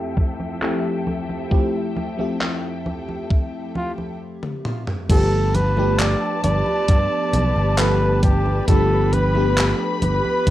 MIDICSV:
0, 0, Header, 1, 6, 480
1, 0, Start_track
1, 0, Tempo, 895522
1, 812, Time_signature, 4, 2, 24, 8
1, 5630, End_track
2, 0, Start_track
2, 0, Title_t, "Flugelhorn"
2, 0, Program_c, 0, 56
2, 2017, Note_on_c, 0, 65, 91
2, 2102, Note_off_c, 0, 65, 0
2, 2736, Note_on_c, 0, 69, 108
2, 2974, Note_on_c, 0, 71, 106
2, 2982, Note_off_c, 0, 69, 0
2, 3211, Note_on_c, 0, 74, 112
2, 3219, Note_off_c, 0, 71, 0
2, 3449, Note_off_c, 0, 74, 0
2, 3452, Note_on_c, 0, 74, 124
2, 4173, Note_on_c, 0, 71, 110
2, 4181, Note_off_c, 0, 74, 0
2, 4409, Note_off_c, 0, 71, 0
2, 4413, Note_on_c, 0, 67, 102
2, 4636, Note_off_c, 0, 67, 0
2, 4652, Note_on_c, 0, 69, 109
2, 4896, Note_on_c, 0, 71, 104
2, 4904, Note_off_c, 0, 69, 0
2, 5230, Note_off_c, 0, 71, 0
2, 5372, Note_on_c, 0, 71, 112
2, 5630, Note_off_c, 0, 71, 0
2, 5630, End_track
3, 0, Start_track
3, 0, Title_t, "String section"
3, 0, Program_c, 1, 48
3, 0, Note_on_c, 1, 41, 81
3, 0, Note_on_c, 1, 53, 70
3, 0, Note_on_c, 1, 69, 71
3, 0, Note_on_c, 1, 76, 73
3, 0, Note_on_c, 1, 79, 86
3, 2230, Note_off_c, 1, 69, 0
3, 2230, Note_off_c, 1, 76, 0
3, 2231, Note_off_c, 1, 41, 0
3, 2231, Note_off_c, 1, 53, 0
3, 2231, Note_off_c, 1, 79, 0
3, 2736, Note_on_c, 1, 81, 93
3, 2737, Note_on_c, 1, 67, 84
3, 2737, Note_on_c, 1, 71, 79
3, 4635, Note_off_c, 1, 81, 0
3, 4654, Note_on_c, 1, 83, 96
3, 5630, Note_off_c, 1, 67, 0
3, 5630, Note_off_c, 1, 71, 0
3, 5630, Note_off_c, 1, 83, 0
3, 5630, End_track
4, 0, Start_track
4, 0, Title_t, "FM electric piano"
4, 0, Program_c, 2, 5
4, 0, Control_c, 2, 64, 127
4, 0, Note_on_c, 2, 53, 86
4, 0, Note_on_c, 2, 57, 77
4, 0, Note_on_c, 2, 60, 80
4, 0, Note_on_c, 2, 64, 77
4, 0, Note_on_c, 2, 67, 93
4, 298, Note_off_c, 2, 53, 0
4, 301, Note_off_c, 2, 57, 0
4, 303, Note_off_c, 2, 60, 0
4, 305, Note_off_c, 2, 64, 0
4, 307, Note_off_c, 2, 67, 0
4, 329, Note_on_c, 2, 53, 86
4, 331, Note_on_c, 2, 57, 80
4, 332, Note_on_c, 2, 60, 76
4, 336, Note_on_c, 2, 64, 77
4, 338, Note_on_c, 2, 67, 95
4, 402, Note_off_c, 2, 53, 0
4, 403, Note_off_c, 2, 57, 0
4, 404, Note_off_c, 2, 60, 0
4, 405, Note_off_c, 2, 64, 0
4, 407, Note_off_c, 2, 67, 0
4, 806, Note_on_c, 2, 53, 94
4, 808, Note_on_c, 2, 57, 86
4, 809, Note_on_c, 2, 60, 88
4, 813, Note_on_c, 2, 64, 85
4, 814, Note_on_c, 2, 67, 104
4, 1141, Note_off_c, 2, 53, 0
4, 1142, Note_off_c, 2, 57, 0
4, 1143, Note_off_c, 2, 60, 0
4, 1144, Note_off_c, 2, 64, 0
4, 1145, Note_off_c, 2, 67, 0
4, 1165, Note_on_c, 2, 53, 81
4, 1168, Note_on_c, 2, 57, 75
4, 1173, Note_on_c, 2, 60, 76
4, 1177, Note_on_c, 2, 76, 74
4, 1181, Note_on_c, 2, 67, 90
4, 2248, Note_off_c, 2, 53, 0
4, 2250, Note_off_c, 2, 57, 0
4, 2252, Note_off_c, 2, 60, 0
4, 2254, Note_off_c, 2, 76, 0
4, 2256, Note_off_c, 2, 67, 0
4, 2729, Note_on_c, 2, 53, 86
4, 2733, Note_on_c, 2, 57, 76
4, 2733, Note_on_c, 2, 59, 78
4, 2736, Note_on_c, 2, 62, 79
4, 2738, Note_on_c, 2, 67, 94
4, 2740, Control_c, 2, 64, 0
4, 2825, Control_c, 2, 64, 127
4, 3063, Note_off_c, 2, 53, 0
4, 3064, Note_off_c, 2, 57, 0
4, 3065, Note_off_c, 2, 59, 0
4, 3066, Note_off_c, 2, 62, 0
4, 3067, Note_off_c, 2, 67, 0
4, 3087, Note_on_c, 2, 53, 89
4, 3091, Note_on_c, 2, 57, 82
4, 3095, Note_on_c, 2, 59, 84
4, 3100, Note_on_c, 2, 62, 83
4, 3104, Note_on_c, 2, 67, 97
4, 4141, Note_off_c, 2, 53, 0
4, 4142, Note_off_c, 2, 57, 0
4, 4145, Note_off_c, 2, 59, 0
4, 4147, Note_off_c, 2, 62, 0
4, 4149, Note_off_c, 2, 67, 0
4, 4169, Note_on_c, 2, 53, 87
4, 4171, Note_on_c, 2, 57, 82
4, 4173, Note_on_c, 2, 59, 83
4, 4176, Note_on_c, 2, 62, 84
4, 4177, Note_on_c, 2, 67, 100
4, 4242, Note_off_c, 2, 53, 0
4, 4243, Note_off_c, 2, 57, 0
4, 4244, Note_off_c, 2, 59, 0
4, 4246, Note_off_c, 2, 62, 0
4, 4246, Note_off_c, 2, 67, 0
4, 4649, Note_on_c, 2, 53, 99
4, 4652, Note_on_c, 2, 57, 91
4, 4654, Note_on_c, 2, 59, 90
4, 4655, Note_on_c, 2, 62, 92
4, 4657, Note_on_c, 2, 67, 109
4, 4983, Note_off_c, 2, 53, 0
4, 4984, Note_off_c, 2, 57, 0
4, 4985, Note_off_c, 2, 59, 0
4, 4985, Note_off_c, 2, 62, 0
4, 4987, Note_off_c, 2, 67, 0
4, 5007, Note_on_c, 2, 53, 86
4, 5011, Note_on_c, 2, 57, 76
4, 5015, Note_on_c, 2, 59, 79
4, 5019, Note_on_c, 2, 62, 80
4, 5023, Note_on_c, 2, 67, 95
4, 5630, Note_off_c, 2, 53, 0
4, 5630, Note_off_c, 2, 57, 0
4, 5630, Note_off_c, 2, 59, 0
4, 5630, Note_off_c, 2, 62, 0
4, 5630, Note_off_c, 2, 67, 0
4, 5630, End_track
5, 0, Start_track
5, 0, Title_t, "Fretless electric bass"
5, 0, Program_c, 3, 35
5, 2731, Note_on_c, 3, 31, 100
5, 3290, Note_off_c, 3, 31, 0
5, 3453, Note_on_c, 3, 31, 83
5, 3547, Note_off_c, 3, 31, 0
5, 3692, Note_on_c, 3, 43, 82
5, 3786, Note_off_c, 3, 43, 0
5, 3931, Note_on_c, 3, 35, 94
5, 4026, Note_off_c, 3, 35, 0
5, 4051, Note_on_c, 3, 31, 91
5, 4609, Note_off_c, 3, 31, 0
5, 4652, Note_on_c, 3, 31, 104
5, 5210, Note_off_c, 3, 31, 0
5, 5372, Note_on_c, 3, 31, 80
5, 5466, Note_off_c, 3, 31, 0
5, 5612, Note_on_c, 3, 43, 82
5, 5630, Note_off_c, 3, 43, 0
5, 5630, End_track
6, 0, Start_track
6, 0, Title_t, "Drums"
6, 90, Note_on_c, 9, 63, 61
6, 91, Note_on_c, 9, 36, 104
6, 144, Note_off_c, 9, 63, 0
6, 145, Note_off_c, 9, 36, 0
6, 212, Note_on_c, 9, 63, 34
6, 266, Note_off_c, 9, 63, 0
6, 332, Note_on_c, 9, 39, 120
6, 332, Note_on_c, 9, 63, 25
6, 386, Note_off_c, 9, 39, 0
6, 386, Note_off_c, 9, 63, 0
6, 573, Note_on_c, 9, 63, 61
6, 626, Note_off_c, 9, 63, 0
6, 693, Note_on_c, 9, 63, 34
6, 746, Note_off_c, 9, 63, 0
6, 811, Note_on_c, 9, 36, 120
6, 813, Note_on_c, 9, 63, 25
6, 864, Note_off_c, 9, 36, 0
6, 867, Note_off_c, 9, 63, 0
6, 1053, Note_on_c, 9, 63, 57
6, 1107, Note_off_c, 9, 63, 0
6, 1174, Note_on_c, 9, 63, 34
6, 1228, Note_off_c, 9, 63, 0
6, 1293, Note_on_c, 9, 39, 116
6, 1293, Note_on_c, 9, 63, 25
6, 1346, Note_off_c, 9, 39, 0
6, 1346, Note_off_c, 9, 63, 0
6, 1533, Note_on_c, 9, 63, 59
6, 1587, Note_off_c, 9, 63, 0
6, 1654, Note_on_c, 9, 63, 34
6, 1708, Note_off_c, 9, 63, 0
6, 1771, Note_on_c, 9, 36, 119
6, 1773, Note_on_c, 9, 63, 25
6, 1825, Note_off_c, 9, 36, 0
6, 1827, Note_off_c, 9, 63, 0
6, 2012, Note_on_c, 9, 63, 59
6, 2066, Note_off_c, 9, 63, 0
6, 2134, Note_on_c, 9, 63, 34
6, 2187, Note_off_c, 9, 63, 0
6, 2374, Note_on_c, 9, 48, 50
6, 2427, Note_off_c, 9, 48, 0
6, 2493, Note_on_c, 9, 47, 74
6, 2546, Note_off_c, 9, 47, 0
6, 2612, Note_on_c, 9, 45, 76
6, 2666, Note_off_c, 9, 45, 0
6, 2731, Note_on_c, 9, 36, 120
6, 2732, Note_on_c, 9, 42, 84
6, 2732, Note_on_c, 9, 49, 108
6, 2732, Note_on_c, 9, 63, 30
6, 2785, Note_off_c, 9, 36, 0
6, 2786, Note_off_c, 9, 42, 0
6, 2786, Note_off_c, 9, 49, 0
6, 2786, Note_off_c, 9, 63, 0
6, 2972, Note_on_c, 9, 42, 68
6, 2972, Note_on_c, 9, 63, 68
6, 3026, Note_off_c, 9, 42, 0
6, 3026, Note_off_c, 9, 63, 0
6, 3093, Note_on_c, 9, 63, 40
6, 3147, Note_off_c, 9, 63, 0
6, 3212, Note_on_c, 9, 39, 120
6, 3212, Note_on_c, 9, 42, 83
6, 3212, Note_on_c, 9, 63, 30
6, 3266, Note_off_c, 9, 39, 0
6, 3266, Note_off_c, 9, 42, 0
6, 3266, Note_off_c, 9, 63, 0
6, 3451, Note_on_c, 9, 42, 72
6, 3451, Note_on_c, 9, 63, 70
6, 3504, Note_off_c, 9, 42, 0
6, 3504, Note_off_c, 9, 63, 0
6, 3571, Note_on_c, 9, 63, 39
6, 3624, Note_off_c, 9, 63, 0
6, 3690, Note_on_c, 9, 42, 85
6, 3690, Note_on_c, 9, 63, 28
6, 3691, Note_on_c, 9, 36, 122
6, 3743, Note_off_c, 9, 42, 0
6, 3743, Note_off_c, 9, 63, 0
6, 3745, Note_off_c, 9, 36, 0
6, 3931, Note_on_c, 9, 42, 72
6, 3931, Note_on_c, 9, 63, 71
6, 3985, Note_off_c, 9, 42, 0
6, 3985, Note_off_c, 9, 63, 0
6, 4053, Note_on_c, 9, 63, 39
6, 4107, Note_off_c, 9, 63, 0
6, 4172, Note_on_c, 9, 39, 121
6, 4172, Note_on_c, 9, 42, 84
6, 4172, Note_on_c, 9, 63, 29
6, 4225, Note_off_c, 9, 39, 0
6, 4225, Note_off_c, 9, 42, 0
6, 4225, Note_off_c, 9, 63, 0
6, 4411, Note_on_c, 9, 42, 68
6, 4411, Note_on_c, 9, 63, 69
6, 4412, Note_on_c, 9, 36, 110
6, 4464, Note_off_c, 9, 42, 0
6, 4464, Note_off_c, 9, 63, 0
6, 4465, Note_off_c, 9, 36, 0
6, 4533, Note_on_c, 9, 63, 39
6, 4587, Note_off_c, 9, 63, 0
6, 4652, Note_on_c, 9, 36, 122
6, 4652, Note_on_c, 9, 42, 85
6, 4652, Note_on_c, 9, 63, 29
6, 4705, Note_off_c, 9, 36, 0
6, 4706, Note_off_c, 9, 42, 0
6, 4706, Note_off_c, 9, 63, 0
6, 4892, Note_on_c, 9, 42, 69
6, 4892, Note_on_c, 9, 63, 66
6, 4946, Note_off_c, 9, 42, 0
6, 4946, Note_off_c, 9, 63, 0
6, 5013, Note_on_c, 9, 63, 37
6, 5066, Note_off_c, 9, 63, 0
6, 5133, Note_on_c, 9, 39, 126
6, 5133, Note_on_c, 9, 42, 85
6, 5133, Note_on_c, 9, 63, 28
6, 5186, Note_off_c, 9, 39, 0
6, 5186, Note_off_c, 9, 42, 0
6, 5186, Note_off_c, 9, 63, 0
6, 5371, Note_on_c, 9, 42, 70
6, 5371, Note_on_c, 9, 63, 68
6, 5425, Note_off_c, 9, 42, 0
6, 5425, Note_off_c, 9, 63, 0
6, 5492, Note_on_c, 9, 63, 38
6, 5546, Note_off_c, 9, 63, 0
6, 5611, Note_on_c, 9, 36, 127
6, 5612, Note_on_c, 9, 42, 84
6, 5612, Note_on_c, 9, 63, 28
6, 5630, Note_off_c, 9, 36, 0
6, 5630, Note_off_c, 9, 42, 0
6, 5630, Note_off_c, 9, 63, 0
6, 5630, End_track
0, 0, End_of_file